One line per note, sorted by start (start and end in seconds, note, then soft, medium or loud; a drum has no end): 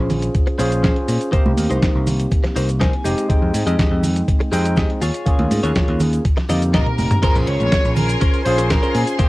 0.00 0.28 A#1 medium
0.00 0.56 C#4 medium
0.00 0.56 F4 medium
0.00 0.57 G#4 medium
0.00 0.56 C5 medium
0.10 open hi-hat loud
0.10 low conga loud
0.10 shaker medium
0.22 closed hi-hat soft
0.22 shaker soft
0.34 kick loud
0.34 closed hi-hat medium
0.34 shaker soft
0.47 muted clean electric guitar stroke loud
0.47 closed hi-hat soft
0.58 0.90 A#1 medium
0.58 0.72 C#4 medium
0.58 1.30 C#4 medium
0.58 1.30 F4 medium
0.58 0.72 G#4 medium
0.58 1.31 G#4 medium
0.58 1.30 C5 medium
0.58 0.72 C5 medium
0.58 open hi-hat loud
0.58 shaker medium
0.72 closed hi-hat medium
0.72 shaker soft
0.72 shaker medium
0.83 0.96 C#4 medium
0.83 0.96 G#4 medium
0.83 0.96 C5 medium
0.83 kick loud
0.83 snare loud
0.83 closed hi-hat medium
0.83 shaker soft
0.96 closed hi-hat soft
1.08 1.17 A#2 medium
1.08 muted clean electric guitar stroke soft
1.08 open hi-hat loud
1.08 shaker medium
1.21 closed hi-hat soft
1.21 shaker soft
1.32 3.02 A#3 medium
1.32 3.02 C4 medium
1.32 1.51 D#4 loud
1.32 3.02 D#4 medium
1.32 3.03 G4 loud
1.32 1.51 A#4 medium
1.32 1.51 C5 loud
1.32 muted picked electric bass stroke soft
1.32 kick loud
1.32 closed hi-hat medium
1.32 shaker soft
1.46 1.54 C2 medium
1.46 high conga medium
1.57 1.66 D#2 medium
1.57 open hi-hat loud
1.57 high conga medium
1.57 shaker medium
1.70 1.78 C2 loud
1.70 2.07 D#4 medium
1.70 2.07 A#4 medium
1.70 2.07 C5 loud
1.70 closed hi-hat soft
1.70 shaker soft
1.82 kick loud
1.82 snare loud
1.82 closed hi-hat medium
1.82 shaker soft
1.95 2.25 C2 medium
2.06 open hi-hat loud
2.06 low conga medium
2.06 shaker medium
2.19 closed hi-hat medium
2.19 shaker soft
2.19 shaker medium
2.31 kick loud
2.31 closed hi-hat medium
2.31 shaker soft
2.44 muted clean electric guitar stroke loud
2.44 snare soft
2.44 closed hi-hat soft
2.56 2.86 C2 medium
2.56 2.68 D#4 medium
2.56 2.69 A#4 medium
2.56 2.69 C5 medium
2.56 open hi-hat medium
2.56 shaker medium
2.69 closed hi-hat medium
2.69 shaker medium
2.69 shaker soft
2.80 2.93 D#4 medium
2.80 2.93 A#4 medium
2.80 2.93 C5 medium
2.80 3.26 G#5 medium
2.80 kick loud
2.80 snare loud
2.80 closed hi-hat medium
2.80 shaker soft
2.93 closed hi-hat soft
3.04 3.13 F1 medium
3.04 3.27 G#3 medium
3.04 3.27 C4 medium
3.04 3.27 D#4 medium
3.04 3.54 G4 medium
3.04 3.27 G4 medium
3.04 3.54 G#4 medium
3.04 3.54 D#5 medium
3.04 open hi-hat loud
3.04 shaker medium
3.18 closed hi-hat medium
3.18 shaker medium
3.18 shaker soft
3.29 4.49 G#3 medium
3.29 4.50 C4 medium
3.29 4.50 D#4 medium
3.29 4.50 G5 medium
3.29 muted picked electric bass stroke soft
3.29 kick loud
3.29 closed hi-hat medium
3.29 shaker soft
3.42 3.50 F2 loud
3.54 3.62 G#2 medium
3.54 open hi-hat loud
3.54 high conga medium
3.54 shaker loud
3.54 shaker medium
3.67 3.75 F2 loud
3.67 4.03 G4 medium
3.67 4.03 G#4 medium
3.67 4.03 D#5 medium
3.67 closed hi-hat medium
3.67 shaker soft
3.67 shaker medium
3.79 kick loud
3.79 snare loud
3.79 closed hi-hat medium
3.79 shaker soft
3.91 4.21 F2 loud
4.03 open hi-hat loud
4.03 low conga medium
4.03 shaker medium
4.16 closed hi-hat medium
4.16 shaker soft
4.28 kick loud
4.28 closed hi-hat medium
4.28 shaker soft
4.40 muted clean electric guitar stroke loud
4.40 closed hi-hat soft
4.52 4.83 F2 medium
4.52 5.00 G#3 medium
4.52 5.00 C4 medium
4.52 5.01 D#4 medium
4.52 4.65 G4 medium
4.52 4.65 G#4 medium
4.52 4.65 D#5 loud
4.52 5.01 G5 loud
4.52 open hi-hat medium
4.52 shaker loud
4.52 shaker medium
4.65 closed hi-hat medium
4.65 shaker medium
4.65 shaker soft
4.76 4.90 G4 medium
4.76 4.90 G#4 medium
4.76 4.90 D#5 medium
4.76 kick loud
4.76 snare loud
4.76 closed hi-hat medium
4.76 shaker soft
4.90 closed hi-hat soft
5.02 5.10 D#2 medium
5.02 5.51 F4 medium
5.02 5.51 G#4 medium
5.02 5.51 C#5 medium
5.02 open hi-hat loud
5.02 shaker medium
5.14 closed hi-hat medium
5.14 shaker soft
5.26 6.23 A#3 medium
5.26 6.23 C#4 medium
5.26 6.24 F4 medium
5.26 6.24 G#4 loud
5.26 muted picked electric bass stroke soft
5.26 kick loud
5.26 closed hi-hat medium
5.26 shaker soft
5.39 5.47 D#2 loud
5.39 closed hi-hat soft
5.39 high conga medium
5.51 5.59 G#2 medium
5.51 open hi-hat loud
5.51 high conga medium
5.51 shaker medium
5.63 5.72 D#2 loud
5.63 6.00 F4 medium
5.63 6.00 G#4 medium
5.63 6.00 C#5 loud
5.63 closed hi-hat medium
5.63 shaker soft
5.63 shaker medium
5.75 kick loud
5.75 snare loud
5.75 closed hi-hat medium
5.75 shaker soft
5.88 6.18 D#2 loud
5.88 closed hi-hat soft
5.99 open hi-hat loud
5.99 low conga medium
5.99 shaker loud
5.99 shaker medium
6.13 closed hi-hat medium
6.13 shaker soft
6.13 shaker medium
6.25 kick loud
6.25 closed hi-hat medium
6.25 shaker soft
6.37 muted clean electric guitar stroke loud
6.37 snare soft
6.37 closed hi-hat soft
6.49 6.80 F2 medium
6.49 7.20 A#3 medium
6.49 7.20 C4 medium
6.49 7.21 D#4 medium
6.49 6.62 F4 medium
6.49 7.21 G4 medium
6.49 6.62 A#4 medium
6.49 6.62 D#5 medium
6.49 open hi-hat loud
6.49 high tom medium
6.49 shaker medium
6.62 closed hi-hat medium
6.62 shaker medium
6.62 shaker soft
6.73 6.86 F4 medium
6.73 6.86 A#4 medium
6.73 7.20 A#4 loud
6.73 6.87 D#5 medium
6.73 kick loud
6.73 snare loud
6.73 closed hi-hat medium
6.73 mid tom medium
6.73 shaker soft
6.86 closed hi-hat soft
6.86 mid tom medium
6.98 7.07 F1 medium
6.98 muted clean electric guitar stroke soft
6.98 open hi-hat loud
6.98 high conga medium
6.98 shaker medium
7.10 closed hi-hat medium
7.10 mid tom medium
7.10 shaker medium
7.10 shaker soft
7.22 7.54 C#4 loud
7.22 8.43 C#4 medium
7.22 8.43 F4 medium
7.22 7.54 G#4 medium
7.22 8.44 G#4 medium
7.22 8.43 A#4 medium
7.22 7.34 A#4 loud
7.22 7.54 A#4 medium
7.22 7.54 C5 loud
7.22 9.18 G#5 medium
7.22 9.29 C6 medium
7.22 muted picked electric bass stroke soft
7.22 kick loud
7.22 closed hi-hat medium
7.22 crash loud
7.22 shaker medium
7.22 shaker soft
7.35 7.44 A#1 loud
7.35 closed hi-hat soft
7.35 shaker soft
7.47 7.56 C#2 medium
7.47 7.93 C#5 loud
7.47 open hi-hat loud
7.47 shaker medium
7.60 7.68 A#1 loud
7.60 closed hi-hat medium
7.60 high conga medium
7.60 shaker medium
7.72 kick loud
7.72 snare loud
7.72 closed hi-hat medium
7.72 shaker medium
7.72 shaker soft
7.84 8.15 A#1 medium
7.84 muted clean electric guitar stroke soft
7.84 shaker soft
7.96 8.46 A#4 loud
7.96 open hi-hat loud
7.96 low conga loud
7.96 shaker medium
8.09 closed hi-hat medium
8.09 shaker medium
8.21 8.40 C#4 medium
8.21 8.40 G#4 medium
8.21 8.40 A#4 medium
8.21 8.40 C5 medium
8.21 kick loud
8.21 closed hi-hat medium
8.21 shaker soft
8.21 shaker medium
8.33 closed hi-hat soft
8.33 shaker soft
8.45 8.76 A#1 medium
8.45 9.17 C#4 medium
8.45 9.17 F4 medium
8.45 9.17 G#4 loud
8.45 9.16 C5 medium
8.45 8.69 C5 loud
8.45 open hi-hat loud
8.45 shaker loud
8.58 8.70 C#4 medium
8.58 8.70 G#4 medium
8.58 8.70 A#4 medium
8.58 8.71 C5 medium
8.58 closed hi-hat medium
8.58 shaker medium
8.70 8.95 A#4 loud
8.70 kick loud
8.70 snare loud
8.70 closed hi-hat medium
8.70 shaker medium
8.70 shaker soft
8.82 9.01 C#4 medium
8.82 9.01 G#4 medium
8.82 9.01 A#4 medium
8.82 9.01 C5 loud
8.82 shaker soft
8.95 9.03 A#2 medium
8.95 9.20 G#4 medium
8.95 open hi-hat loud
8.95 shaker medium
9.07 closed hi-hat medium
9.07 shaker medium
9.19 9.29 A#3 medium
9.19 9.29 C4 medium
9.19 9.29 D#4 loud
9.19 9.29 D#4 medium
9.19 9.29 G4 medium
9.19 9.29 G4 loud
9.19 9.29 A#4 medium
9.19 9.29 C5 loud
9.19 9.29 A#5 medium
9.19 9.29 D#6 medium
9.19 muted picked electric bass stroke soft
9.19 kick loud
9.19 closed hi-hat medium
9.19 shaker medium
9.19 shaker soft